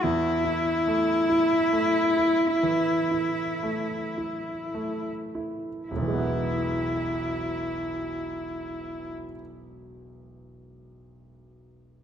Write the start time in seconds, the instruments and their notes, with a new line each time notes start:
0.03 grand piano E2, cello E4
0.44 grand piano E4
0.87 grand piano A3
1.29 grand piano E4
1.72 grand piano A3
2.17 grand piano E4
2.63 grand piano E3
3.11 grand piano E4
3.63 grand piano A3
4.18 grand piano E4
4.75 grand piano A3
5.35 grand piano E4
5.88 grand piano E1, cello E4
5.96 grand piano B1
6.02 grand piano E3
6.08 grand piano G#3
6.13 grand piano B3
6.19 grand piano E4